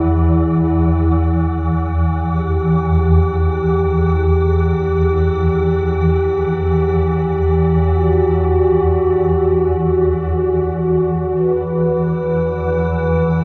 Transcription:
Already playing: synth drone E2 E3, glass harmonica E4
2.25 glass harmonica G4
7.86 glass harmonica F#4
11.10 synth drone E2 E3
11.33 glass harmonica B4

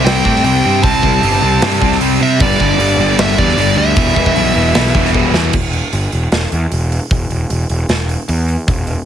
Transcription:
Already playing: distorted electric guitar C3 G3 C4 E4
0.04 picked electric bass C2, overdriven electric guitar C3 G3 C4, lead electric guitar G5, snare, open hi-hat
0.24 picked electric bass A2, overdriven electric guitar C3 G3 C4, kick
0.35 snare
0.44 picked electric bass C2, overdriven electric guitar C3 G3 C4, lead electric guitar G5, open hi-hat
0.63 picked electric bass G2, overdriven electric guitar C3 G3 C4
0.82 picked electric bass C2, distorted electric guitar C3 G3 C4, overdriven electric guitar C3 G3 C4, lead electric guitar A5, kick, open hi-hat
0.86 distorted electric guitar E4
1.02 picked electric bass C2, overdriven electric guitar C3 G3 C4, kick
1.22 picked electric bass G1, overdriven electric guitar C3 G3 C4, open hi-hat
1.42 picked electric bass C2, overdriven electric guitar C3 G3 C4
1.62 picked electric bass G2, overdriven electric guitar C3 G3 C4, snare, open hi-hat
1.80 picked electric bass C2, overdriven electric guitar C3 G3 C4, kick
1.92 snare
2.00 picked electric bass C2, overdriven electric guitar C3 G3 C4, open hi-hat
2.20 picked electric bass C3, overdriven electric guitar C3 G3 C4, lead electric guitar E5
2.40 picked electric bass G1, overdriven electric guitar G2 D3 G3, distorted electric guitar G2 D3 G3 B3 D4, lead electric guitar D5, kick, open hi-hat
2.60 picked electric bass G1, overdriven electric guitar G2 D3 G3, kick
2.77 picked electric bass G1, overdriven electric guitar G2 D3 G3, open hi-hat
2.97 picked electric bass G1, overdriven electric guitar G2 D3 G3
3.18 picked electric bass G1, overdriven electric guitar G2 D3 G3, lead electric guitar E5, snare, open hi-hat
3.37 picked electric bass E2, overdriven electric guitar G2 D3 G3, lead electric guitar D5, kick
3.48 snare
3.57 picked electric bass G1, overdriven electric guitar G2 D3 G3, lead electric guitar D5, open hi-hat
3.76 picked electric bass D2, overdriven electric guitar G2 D3 G3, lead electric guitar E5
3.96 picked electric bass E1, overdriven electric guitar E2 B2 E3, distorted electric guitar E3 G3 B3 E4, kick, open hi-hat
4.16 picked electric bass E1, overdriven electric guitar E2 B2 E3, kick
4.26 kick
4.35 picked electric bass B1, overdriven electric guitar E2 B2 E3, open hi-hat
4.55 picked electric bass E1, overdriven electric guitar E2 B2 E3
4.75 picked electric bass B1, overdriven electric guitar E2 B2 E3, snare, open hi-hat
4.95 picked electric bass E1, overdriven electric guitar E2 B2 E3, kick
5.05 snare
5.14 picked electric bass E1, overdriven electric guitar E2 B2 E3, kick
5.33 picked electric bass E2, overdriven electric guitar E2 B2 E3, snare
5.53 picked electric bass E1, kick, crash
5.73 open hi-hat
5.93 picked electric bass G1, open hi-hat
6.12 picked electric bass E1, open hi-hat
6.31 picked electric bass E1, snare, open hi-hat
6.52 picked electric bass E2, open hi-hat
6.72 picked electric bass E1, open hi-hat
6.92 open hi-hat
7.11 picked electric bass E1, kick, open hi-hat
7.30 picked electric bass E1, open hi-hat
7.50 picked electric bass E1, open hi-hat
7.70 picked electric bass E1, open hi-hat
7.88 picked electric bass E1, snare, open hi-hat
8.09 open hi-hat
8.28 picked electric bass E2, open hi-hat
8.48 open hi-hat
8.68 picked electric bass E1, kick, open hi-hat
8.87 open hi-hat

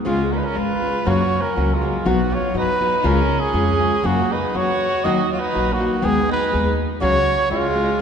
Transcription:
0.05 upright bass C#2, nylon-string guitar C#3 G#3 C#4 F4 G#4, violin G#3, trumpet F4
0.32 violin C#4, trumpet A#4 B4
0.37 violin D#4
0.43 violin C#4, trumpet A#4
0.55 upright bass G#1, nylon-string guitar G#3 C#4 F4 G#4, violin F4, trumpet B4
0.82 nylon-string guitar G#3 C#4 F4 G#4
1.05 nylon-string guitar F#2 C#3 F#3 A#3 C#4 F#4, upright bass F#2, violin F#4, trumpet C#5
1.40 violin C#4, trumpet A#4
1.56 upright bass C#2, nylon-string guitar F#3 A#3 C#4 F#4
1.74 violin G#3, trumpet F4
1.81 nylon-string guitar F#3 A#3 C#4 F#4
2.05 upright bass B1, nylon-string guitar B2 F#3 B3 D#4 F#4, violin B3, trumpet F#4
2.31 violin F4, trumpet C#5
2.54 upright bass G#2, nylon-string guitar F#3 B3 D#4 F#4, violin D#4
2.58 trumpet B4
2.80 nylon-string guitar F#3 B3 D#4 F#4
3.03 upright bass C#2, nylon-string guitar C#3 G#3 C#4 F4 G#4, violin C#4, trumpet A#4
3.37 violin C#4, trumpet G#4
3.53 upright bass F2, nylon-string guitar G#3 C#4 F4 G#4
3.79 nylon-string guitar G#3 C#4 F4 G#4
4.03 nylon-string guitar F#2 C#3 F#3 A#3 C#4 F#4, upright bass F#2, violin A#3, trumpet F#4
4.32 violin D#4, trumpet B4
4.54 upright bass E2, nylon-string guitar F#3 A#3 C#4 F#4, violin F#4, trumpet C#5
5.04 upright bass D#2, nylon-string guitar D#3 F#3 A#3 D#4 F#4, violin F#4, trumpet D#5
5.32 violin F4, trumpet C#5
5.39 violin D#4, trumpet B4
5.53 upright bass A#1, nylon-string guitar F#3 A#3 D#4 F#4
5.72 violin A#3, trumpet F#4
5.78 nylon-string guitar F#3 A#3 D#4 F#4
6.02 upright bass D#2, nylon-string guitar D#3 G#3 B3 D#4 G#4, violin B3, trumpet G#4
6.28 violin D#4, trumpet B4
6.52 upright bass D#2, nylon-string guitar G#3 B3 D#4 G#4
7.01 upright bass C#2, nylon-string guitar C#3 F#3 C#4 F#4 G#4, violin F#4, trumpet C#5
7.49 upright bass C#2, nylon-string guitar G#3 C#4 F4 G#4, violin G#3, trumpet F4
7.75 nylon-string guitar G#3 C#4 F4 G#4

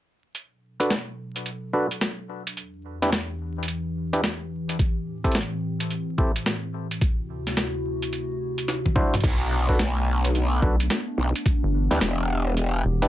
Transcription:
0.35 ambient pad B2 F#3 D4 A4, closed hi-hat
0.80 clav D4 F#4 A4 B4, closed hi-hat
0.90 snare, closed hi-hat
1.36 closed hi-hat
1.46 closed hi-hat
1.73 clav D4 F#4 A4 B4
1.91 closed hi-hat
2.01 snare, closed hi-hat
2.47 closed hi-hat
2.57 ambient pad E2 E3 G4, closed hi-hat
3.02 clav D4 E4 G4 B4, snare, closed hi-hat
3.12 snare, closed hi-hat
3.63 closed hi-hat
3.68 closed hi-hat
4.13 clav D4 E4 G4 B4, closed hi-hat
4.24 snare, closed hi-hat
4.69 closed hi-hat
4.79 ambient pad A2 C4, kick, closed hi-hat
5.24 clav C4 E4 G4 A4, kick, closed hi-hat
5.32 snare, closed hi-hat
5.35 closed hi-hat
5.41 closed hi-hat
5.80 closed hi-hat
5.90 closed hi-hat
6.18 clav C4 E4 G4 A4, kick
6.36 closed hi-hat
6.46 snare, closed hi-hat
6.91 closed hi-hat
7.01 ambient pad D2 C3 E4 F#4, kick, closed hi-hat
7.47 snare, closed hi-hat
7.57 snare, closed hi-hat
8.02 closed hi-hat
8.13 closed hi-hat
8.58 closed hi-hat
8.68 snare, closed hi-hat
8.86 kick, high tom
8.96 clav D4 E4 F#4 C5, kick, mid tom
9.14 closed hi-hat, mid tom
9.20 wobble bass B1, ambient pad A3 D4, kick, closed hi-hat
9.24 ambient pad B3, closed hi-hat, crash
9.30 closed hi-hat
9.33 closed hi-hat
9.69 clav D4 F#4 A4 B4, kick
9.79 wobble bass B1, snare, closed hi-hat
10.25 closed hi-hat
10.35 closed hi-hat
10.62 analog synth bass B1, clav D4 F#4 A4 B4, kick
10.80 closed hi-hat
10.90 snare, closed hi-hat
11.18 wobble bass B1
11.36 closed hi-hat
11.45 ambient pad E3 B3 G4, kick, closed hi-hat
11.63 analog synth bass G1
11.91 wobble bass D2, clav D4 E4 G4 B4, snare, closed hi-hat
12.01 wobble bass E1, snare, closed hi-hat
12.57 closed hi-hat
12.85 analog synth bass E1
13.02 clav D4 E4 G4 B4, closed hi-hat

